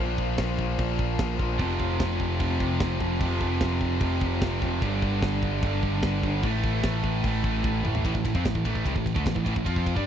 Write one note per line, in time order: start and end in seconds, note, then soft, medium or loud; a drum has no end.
0.00 0.37 A#1 loud
0.00 1.38 A#2 medium
0.00 1.40 F3 loud
0.00 1.56 A#3 medium
0.00 1.37 A#3 loud
0.00 1.56 F4 medium
0.00 1.56 C5 medium
0.06 0.13 A#2 medium
0.06 0.14 F3 medium
0.13 0.21 A#2 medium
0.13 0.22 F3 medium
0.18 kick medium
0.22 0.29 A#2 medium
0.22 0.29 F3 medium
0.30 0.37 A#2 medium
0.30 0.37 F3 medium
0.37 0.77 A#1 medium
0.37 0.44 A#2 medium
0.37 0.45 F3 medium
0.37 kick loud
0.37 snare loud
0.37 crash medium
0.44 0.51 A#2 medium
0.44 0.52 F3 medium
0.51 0.59 A#2 medium
0.51 0.60 F3 medium
0.59 0.67 A#2 medium
0.59 0.67 F3 medium
0.59 kick medium
0.67 0.75 A#2 medium
0.67 0.75 F3 medium
0.75 0.98 A#1 loud
0.75 0.82 A#2 medium
0.75 0.82 F3 medium
0.75 kick loud
0.75 crash medium
0.83 0.90 A#2 medium
0.83 0.90 F3 medium
0.91 0.97 A#2 medium
0.91 0.99 F3 medium
0.98 1.18 A#1 loud
0.98 1.05 A#2 medium
0.98 1.05 F3 medium
0.98 kick medium
1.05 1.13 A#2 medium
1.05 1.13 F3 medium
1.14 1.21 A#2 medium
1.14 1.21 F3 medium
1.19 1.38 A#1 medium
1.19 1.29 A#2 medium
1.19 1.29 F3 medium
1.19 kick loud
1.19 snare loud
1.19 crash medium
1.29 1.36 A#2 medium
1.29 1.35 F3 medium
1.35 1.44 A#2 medium
1.35 1.43 F3 medium
1.35 1.58 A#3 medium
1.39 1.59 A#1 medium
1.39 1.61 F3 medium
1.39 kick medium
1.44 1.52 A#2 medium
1.44 1.52 F3 medium
1.52 1.59 A#2 medium
1.52 1.60 F3 medium
1.58 1.98 F1 loud
1.58 1.66 F2 medium
1.58 1.67 C3 medium
1.58 4.78 F3 medium
1.58 2.98 F3 loud
1.58 4.78 C4 medium
1.58 4.78 G4 medium
1.58 kick loud
1.58 crash medium
1.62 1.74 F2 medium
1.62 2.43 F3 loud
1.68 1.74 C3 medium
1.74 1.81 F2 medium
1.74 1.81 C3 medium
1.80 1.89 F2 medium
1.80 1.89 C3 medium
1.80 kick medium
1.90 1.96 F2 medium
1.90 1.97 C3 medium
1.96 2.38 F1 loud
1.96 2.04 F2 medium
1.96 2.05 C3 medium
1.96 kick loud
1.96 snare loud
1.96 crash medium
2.05 2.12 F2 medium
2.05 2.12 C3 medium
2.12 2.19 F2 medium
2.12 2.20 C3 medium
2.20 2.27 F2 medium
2.20 2.27 C3 medium
2.20 kick loud
2.28 2.35 F2 medium
2.28 2.35 C3 medium
2.36 2.42 F2 medium
2.36 2.43 C3 medium
2.40 2.59 F1 loud
2.40 2.50 F2 medium
2.40 2.50 C3 medium
2.40 3.21 F3 medium
2.40 kick loud
2.40 crash medium
2.51 2.57 F2 medium
2.51 2.58 C3 medium
2.58 2.79 F1 loud
2.58 2.65 F2 medium
2.58 2.66 C3 medium
2.58 kick medium
2.65 2.72 F2 medium
2.65 2.73 C3 medium
2.73 2.80 F2 medium
2.73 2.81 C3 medium
2.80 3.00 F1 loud
2.80 2.88 F2 medium
2.80 2.89 C3 medium
2.80 kick loud
2.80 snare loud
2.80 crash medium
2.89 2.96 F2 medium
2.89 2.95 C3 medium
2.96 3.03 F2 medium
2.96 3.03 C3 medium
2.96 3.19 F3 loud
3.00 3.20 F1 loud
3.00 3.10 F2 medium
3.00 3.12 C3 medium
3.00 kick medium
3.11 3.18 F2 medium
3.11 3.20 C3 medium
3.20 3.59 F1 loud
3.20 3.27 F2 medium
3.20 3.28 C3 medium
3.20 4.60 F3 loud
3.20 4.02 F3 loud
3.20 kick loud
3.20 crash medium
3.27 3.35 F2 medium
3.27 3.35 C3 medium
3.36 3.43 F2 medium
3.36 3.43 C3 medium
3.41 3.50 F2 medium
3.41 3.51 C3 medium
3.41 kick medium
3.51 3.58 F2 medium
3.51 3.59 C3 medium
3.58 4.00 F1 loud
3.58 3.65 F2 medium
3.58 3.66 C3 medium
3.58 kick loud
3.58 snare loud
3.58 crash medium
3.65 3.73 F2 medium
3.65 3.74 C3 medium
3.73 3.81 F2 medium
3.73 3.82 C3 medium
3.81 3.88 F2 medium
3.81 3.89 C3 medium
3.81 kick medium
3.88 3.96 F2 medium
3.88 3.97 C3 medium
3.97 4.20 F1 loud
3.97 4.04 F2 medium
3.97 4.05 C3 medium
3.97 kick loud
3.97 crash medium
4.04 4.11 F2 medium
4.04 4.12 C3 medium
4.04 4.82 F3 medium
4.12 4.20 F2 medium
4.12 4.19 C3 medium
4.20 4.41 F1 loud
4.20 4.26 F2 medium
4.20 4.28 C3 medium
4.20 kick medium
4.27 4.35 F2 medium
4.27 4.36 C3 medium
4.35 4.42 F2 medium
4.35 4.43 C3 medium
4.42 4.61 F1 loud
4.42 4.50 F2 medium
4.42 4.51 C3 medium
4.42 kick loud
4.42 snare loud
4.42 crash medium
4.51 4.58 F2 medium
4.51 4.59 C3 medium
4.58 4.66 F2 medium
4.58 4.65 C3 medium
4.58 4.80 F3 loud
4.58 kick loud
4.62 4.81 F1 medium
4.62 4.73 C3 medium
4.66 4.73 F2 medium
4.74 4.81 F2 medium
4.74 4.81 C3 medium
4.81 5.20 G1 loud
4.81 4.88 G2 medium
4.81 4.89 D3 medium
4.81 6.42 G3 medium
4.81 6.22 G3 loud
4.81 5.63 G3 loud
4.81 6.42 D4 medium
4.81 8.02 A4 medium
4.81 kick loud
4.81 crash medium
4.88 4.96 G2 medium
4.88 4.97 D3 medium
4.96 5.04 G2 medium
4.96 5.05 D3 medium
5.02 5.12 G2 medium
5.02 5.11 D3 medium
5.02 kick medium
5.12 5.18 G2 medium
5.12 5.19 D3 medium
5.19 5.61 G1 loud
5.19 5.26 G2 medium
5.19 5.27 D3 medium
5.19 kick loud
5.19 snare loud
5.19 crash medium
5.28 5.35 G2 medium
5.28 5.35 D3 medium
5.35 5.42 G2 medium
5.35 5.43 D3 medium
5.43 5.50 G2 medium
5.43 5.51 D3 medium
5.43 kick medium
5.51 5.57 G2 medium
5.51 5.58 D3 medium
5.58 5.65 G2 medium
5.58 5.65 D3 medium
5.63 5.82 G1 loud
5.63 5.73 G2 medium
5.63 5.73 D3 medium
5.63 6.44 G3 medium
5.63 kick loud
5.63 crash medium
5.74 5.81 G2 medium
5.74 5.82 D3 medium
5.82 6.02 G1 medium
5.82 5.89 G2 medium
5.82 5.89 D3 medium
5.82 kick medium
5.89 5.97 G2 medium
5.89 5.97 D3 medium
5.97 6.03 G2 medium
5.97 6.05 D3 medium
6.03 6.22 G1 loud
6.03 6.11 G2 medium
6.03 6.12 D3 medium
6.03 kick loud
6.03 snare loud
6.03 crash medium
6.12 6.20 G2 medium
6.12 6.19 D3 medium
6.19 6.27 G2 medium
6.19 6.27 D3 medium
6.23 6.42 G1 loud
6.23 6.35 D3 medium
6.23 6.42 G3 medium
6.23 kick loud
6.27 6.35 G2 medium
6.35 6.43 G2 medium
6.35 6.43 D3 medium
6.42 6.82 A1 loud
6.42 6.51 A2 medium
6.42 6.51 E3 loud
6.42 8.03 A3 medium
6.42 8.02 E4 medium
6.42 kick loud
6.42 crash medium
6.46 7.24 A3 loud
6.46 7.83 A3 loud
6.51 6.57 A2 medium
6.51 6.59 E3 medium
6.58 6.65 A2 medium
6.58 6.66 E3 medium
6.64 6.74 A2 medium
6.64 6.74 E3 medium
6.64 kick medium
6.74 6.81 A2 medium
6.74 6.82 E3 medium
6.81 7.22 A1 loud
6.81 6.88 A2 medium
6.81 6.89 E3 medium
6.81 kick loud
6.81 snare loud
6.81 crash medium
6.89 6.96 A2 medium
6.89 6.96 E3 medium
6.96 7.04 A2 medium
6.96 7.03 E3 medium
7.03 7.10 A2 medium
7.03 7.10 E3 loud
7.03 kick medium
7.10 7.18 A2 medium
7.10 7.18 E3 medium
7.19 7.26 A2 medium
7.19 7.27 E3 medium
7.23 7.43 A1 loud
7.23 8.03 A2 medium
7.23 kick loud
7.23 crash medium
7.27 7.34 A2 medium
7.27 7.34 E3 medium
7.27 8.05 A3 medium
7.34 7.42 A2 medium
7.34 7.42 E3 medium
7.42 7.63 A1 medium
7.42 7.49 A2 medium
7.42 7.50 E3 medium
7.42 kick medium
7.49 7.57 A2 medium
7.49 7.57 E3 medium
7.57 7.64 A2 medium
7.57 7.65 E3 medium
7.64 7.83 A1 loud
7.64 7.72 A2 medium
7.64 7.73 E3 medium
7.64 kick loud
7.72 7.80 A2 medium
7.72 7.81 E3 medium
7.81 8.03 A1 loud
7.81 7.87 A2 medium
7.81 7.87 E3 medium
7.81 8.03 A3 medium
7.85 7.95 A2 medium
7.85 7.95 E3 medium
7.85 mid tom loud
7.95 8.03 A2 medium
7.95 8.03 E3 medium
7.95 floor tom loud
8.04 8.14 A1 loud
8.04 8.13 A2 loud
8.04 8.14 E3 loud
8.04 kick medium
8.04 ride loud
8.15 8.24 A1 medium
8.15 8.23 A2 medium
8.15 8.24 E3 medium
8.15 kick medium
8.24 8.34 A1 medium
8.24 8.34 A2 medium
8.24 8.34 E3 medium
8.24 kick medium
8.24 ride medium
8.34 8.44 F2 medium
8.34 8.44 F3 medium
8.34 8.44 C4 loud
8.34 kick medium
8.45 8.54 A1 medium
8.45 8.54 A2 medium
8.45 8.54 E3 medium
8.45 kick medium
8.45 snare loud
8.45 ride loud
8.55 8.64 A1 medium
8.55 8.64 A2 medium
8.55 8.64 E3 medium
8.55 kick medium
8.65 8.84 A1 loud
8.65 8.84 A2 medium
8.65 8.85 E3 medium
8.65 8.85 A3 medium
8.65 kick medium
8.65 ride medium
8.75 kick medium
8.85 8.95 C2 medium
8.85 8.94 C3 medium
8.85 8.95 G3 loud
8.85 kick medium
8.85 ride medium
8.95 9.14 A1 medium
8.95 9.11 A2 medium
8.95 9.11 E3 medium
8.95 kick medium
9.06 kick medium
9.06 ride medium
9.15 9.25 D2 medium
9.15 9.25 D3 medium
9.15 9.25 A3 loud
9.15 kick medium
9.25 9.35 A1 medium
9.25 9.34 A2 medium
9.25 9.35 E3 medium
9.25 kick medium
9.25 snare loud
9.25 ride loud
9.36 9.45 A1 medium
9.36 9.44 A2 medium
9.36 9.45 E3 medium
9.36 kick medium
9.46 9.55 A1 loud
9.46 9.54 A2 medium
9.46 9.55 E3 loud
9.46 kick medium
9.46 ride medium
9.56 9.65 A1 medium
9.56 9.66 A2 medium
9.56 9.66 E3 medium
9.56 kick medium
9.66 9.94 F2 loud
9.66 9.96 F3 medium
9.66 9.96 C4 loud
9.66 9.96 F4 loud
9.66 kick medium
9.66 ride loud
9.76 kick medium
9.86 kick medium
9.86 ride medium
9.96 10.06 G2 medium
9.96 10.05 G3 medium
9.96 10.06 D4 medium
9.96 kick medium